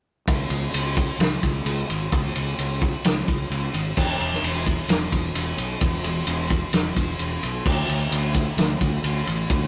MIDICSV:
0, 0, Header, 1, 3, 480
1, 0, Start_track
1, 0, Tempo, 461538
1, 282, Time_signature, 4, 2, 24, 8
1, 10061, End_track
2, 0, Start_track
2, 0, Title_t, "Fingered electric bass"
2, 0, Program_c, 0, 33
2, 286, Note_on_c, 0, 37, 88
2, 464, Note_off_c, 0, 37, 0
2, 519, Note_on_c, 0, 37, 86
2, 700, Note_off_c, 0, 37, 0
2, 763, Note_on_c, 0, 37, 90
2, 1122, Note_off_c, 0, 37, 0
2, 1236, Note_on_c, 0, 37, 96
2, 1418, Note_off_c, 0, 37, 0
2, 1488, Note_on_c, 0, 37, 91
2, 1665, Note_off_c, 0, 37, 0
2, 1712, Note_on_c, 0, 37, 90
2, 1896, Note_off_c, 0, 37, 0
2, 1967, Note_on_c, 0, 32, 93
2, 2145, Note_off_c, 0, 32, 0
2, 2207, Note_on_c, 0, 37, 94
2, 2385, Note_off_c, 0, 37, 0
2, 2450, Note_on_c, 0, 37, 87
2, 2627, Note_off_c, 0, 37, 0
2, 2686, Note_on_c, 0, 37, 95
2, 3044, Note_off_c, 0, 37, 0
2, 3171, Note_on_c, 0, 37, 96
2, 3347, Note_off_c, 0, 37, 0
2, 3410, Note_on_c, 0, 37, 93
2, 3587, Note_off_c, 0, 37, 0
2, 3642, Note_on_c, 0, 37, 92
2, 3822, Note_off_c, 0, 37, 0
2, 3885, Note_on_c, 0, 32, 92
2, 4064, Note_off_c, 0, 32, 0
2, 4130, Note_on_c, 0, 28, 93
2, 4307, Note_off_c, 0, 28, 0
2, 4366, Note_on_c, 0, 28, 82
2, 4544, Note_off_c, 0, 28, 0
2, 4601, Note_on_c, 0, 28, 96
2, 4961, Note_off_c, 0, 28, 0
2, 5079, Note_on_c, 0, 28, 102
2, 5260, Note_off_c, 0, 28, 0
2, 5326, Note_on_c, 0, 28, 95
2, 5505, Note_off_c, 0, 28, 0
2, 5556, Note_on_c, 0, 28, 89
2, 5739, Note_off_c, 0, 28, 0
2, 5798, Note_on_c, 0, 35, 99
2, 5980, Note_off_c, 0, 35, 0
2, 6045, Note_on_c, 0, 28, 88
2, 6224, Note_off_c, 0, 28, 0
2, 6271, Note_on_c, 0, 28, 84
2, 6455, Note_off_c, 0, 28, 0
2, 6517, Note_on_c, 0, 28, 92
2, 6878, Note_off_c, 0, 28, 0
2, 6999, Note_on_c, 0, 28, 94
2, 7180, Note_off_c, 0, 28, 0
2, 7241, Note_on_c, 0, 28, 87
2, 7421, Note_off_c, 0, 28, 0
2, 7470, Note_on_c, 0, 28, 88
2, 7655, Note_off_c, 0, 28, 0
2, 7725, Note_on_c, 0, 35, 91
2, 7903, Note_off_c, 0, 35, 0
2, 7962, Note_on_c, 0, 38, 91
2, 8141, Note_off_c, 0, 38, 0
2, 8200, Note_on_c, 0, 38, 87
2, 8380, Note_off_c, 0, 38, 0
2, 8438, Note_on_c, 0, 38, 88
2, 8798, Note_off_c, 0, 38, 0
2, 8912, Note_on_c, 0, 38, 99
2, 9095, Note_off_c, 0, 38, 0
2, 9158, Note_on_c, 0, 38, 85
2, 9339, Note_off_c, 0, 38, 0
2, 9397, Note_on_c, 0, 38, 87
2, 9578, Note_off_c, 0, 38, 0
2, 9640, Note_on_c, 0, 33, 95
2, 9820, Note_off_c, 0, 33, 0
2, 9879, Note_on_c, 0, 38, 95
2, 10059, Note_off_c, 0, 38, 0
2, 10061, End_track
3, 0, Start_track
3, 0, Title_t, "Drums"
3, 288, Note_on_c, 9, 36, 118
3, 290, Note_on_c, 9, 51, 110
3, 392, Note_off_c, 9, 36, 0
3, 394, Note_off_c, 9, 51, 0
3, 521, Note_on_c, 9, 51, 73
3, 625, Note_off_c, 9, 51, 0
3, 770, Note_on_c, 9, 51, 114
3, 874, Note_off_c, 9, 51, 0
3, 1008, Note_on_c, 9, 36, 92
3, 1009, Note_on_c, 9, 51, 79
3, 1112, Note_off_c, 9, 36, 0
3, 1113, Note_off_c, 9, 51, 0
3, 1248, Note_on_c, 9, 51, 102
3, 1259, Note_on_c, 9, 38, 110
3, 1352, Note_off_c, 9, 51, 0
3, 1363, Note_off_c, 9, 38, 0
3, 1486, Note_on_c, 9, 51, 78
3, 1488, Note_on_c, 9, 36, 76
3, 1590, Note_off_c, 9, 51, 0
3, 1592, Note_off_c, 9, 36, 0
3, 1725, Note_on_c, 9, 51, 100
3, 1829, Note_off_c, 9, 51, 0
3, 1974, Note_on_c, 9, 51, 74
3, 2078, Note_off_c, 9, 51, 0
3, 2205, Note_on_c, 9, 51, 100
3, 2210, Note_on_c, 9, 36, 112
3, 2309, Note_off_c, 9, 51, 0
3, 2314, Note_off_c, 9, 36, 0
3, 2450, Note_on_c, 9, 51, 68
3, 2554, Note_off_c, 9, 51, 0
3, 2690, Note_on_c, 9, 51, 98
3, 2794, Note_off_c, 9, 51, 0
3, 2931, Note_on_c, 9, 36, 91
3, 2931, Note_on_c, 9, 51, 70
3, 3035, Note_off_c, 9, 36, 0
3, 3035, Note_off_c, 9, 51, 0
3, 3166, Note_on_c, 9, 51, 96
3, 3178, Note_on_c, 9, 38, 115
3, 3270, Note_off_c, 9, 51, 0
3, 3282, Note_off_c, 9, 38, 0
3, 3413, Note_on_c, 9, 36, 80
3, 3413, Note_on_c, 9, 51, 67
3, 3517, Note_off_c, 9, 36, 0
3, 3517, Note_off_c, 9, 51, 0
3, 3655, Note_on_c, 9, 51, 85
3, 3759, Note_off_c, 9, 51, 0
3, 3892, Note_on_c, 9, 51, 65
3, 3996, Note_off_c, 9, 51, 0
3, 4127, Note_on_c, 9, 49, 107
3, 4132, Note_on_c, 9, 36, 114
3, 4231, Note_off_c, 9, 49, 0
3, 4236, Note_off_c, 9, 36, 0
3, 4374, Note_on_c, 9, 51, 73
3, 4478, Note_off_c, 9, 51, 0
3, 4506, Note_on_c, 9, 38, 34
3, 4610, Note_off_c, 9, 38, 0
3, 4618, Note_on_c, 9, 51, 111
3, 4722, Note_off_c, 9, 51, 0
3, 4852, Note_on_c, 9, 36, 89
3, 4857, Note_on_c, 9, 51, 77
3, 4956, Note_off_c, 9, 36, 0
3, 4961, Note_off_c, 9, 51, 0
3, 5086, Note_on_c, 9, 51, 98
3, 5097, Note_on_c, 9, 38, 110
3, 5190, Note_off_c, 9, 51, 0
3, 5201, Note_off_c, 9, 38, 0
3, 5329, Note_on_c, 9, 36, 78
3, 5330, Note_on_c, 9, 51, 74
3, 5433, Note_off_c, 9, 36, 0
3, 5434, Note_off_c, 9, 51, 0
3, 5565, Note_on_c, 9, 51, 94
3, 5669, Note_off_c, 9, 51, 0
3, 5805, Note_on_c, 9, 51, 75
3, 5909, Note_off_c, 9, 51, 0
3, 6042, Note_on_c, 9, 51, 111
3, 6046, Note_on_c, 9, 36, 113
3, 6146, Note_off_c, 9, 51, 0
3, 6150, Note_off_c, 9, 36, 0
3, 6283, Note_on_c, 9, 51, 68
3, 6387, Note_off_c, 9, 51, 0
3, 6518, Note_on_c, 9, 51, 111
3, 6622, Note_off_c, 9, 51, 0
3, 6758, Note_on_c, 9, 51, 72
3, 6765, Note_on_c, 9, 36, 95
3, 6862, Note_off_c, 9, 51, 0
3, 6869, Note_off_c, 9, 36, 0
3, 6998, Note_on_c, 9, 51, 94
3, 7009, Note_on_c, 9, 38, 106
3, 7102, Note_off_c, 9, 51, 0
3, 7113, Note_off_c, 9, 38, 0
3, 7242, Note_on_c, 9, 51, 72
3, 7244, Note_on_c, 9, 36, 79
3, 7346, Note_off_c, 9, 51, 0
3, 7348, Note_off_c, 9, 36, 0
3, 7478, Note_on_c, 9, 51, 82
3, 7582, Note_off_c, 9, 51, 0
3, 7726, Note_on_c, 9, 51, 74
3, 7830, Note_off_c, 9, 51, 0
3, 7964, Note_on_c, 9, 36, 116
3, 7964, Note_on_c, 9, 49, 100
3, 8068, Note_off_c, 9, 36, 0
3, 8068, Note_off_c, 9, 49, 0
3, 8209, Note_on_c, 9, 51, 65
3, 8313, Note_off_c, 9, 51, 0
3, 8445, Note_on_c, 9, 51, 105
3, 8549, Note_off_c, 9, 51, 0
3, 8677, Note_on_c, 9, 51, 80
3, 8682, Note_on_c, 9, 36, 85
3, 8781, Note_off_c, 9, 51, 0
3, 8786, Note_off_c, 9, 36, 0
3, 8921, Note_on_c, 9, 51, 89
3, 8933, Note_on_c, 9, 38, 107
3, 9025, Note_off_c, 9, 51, 0
3, 9037, Note_off_c, 9, 38, 0
3, 9161, Note_on_c, 9, 51, 84
3, 9163, Note_on_c, 9, 36, 79
3, 9265, Note_off_c, 9, 51, 0
3, 9267, Note_off_c, 9, 36, 0
3, 9400, Note_on_c, 9, 51, 96
3, 9504, Note_off_c, 9, 51, 0
3, 9643, Note_on_c, 9, 51, 71
3, 9747, Note_off_c, 9, 51, 0
3, 9877, Note_on_c, 9, 51, 109
3, 9881, Note_on_c, 9, 36, 110
3, 9981, Note_off_c, 9, 51, 0
3, 9985, Note_off_c, 9, 36, 0
3, 10061, End_track
0, 0, End_of_file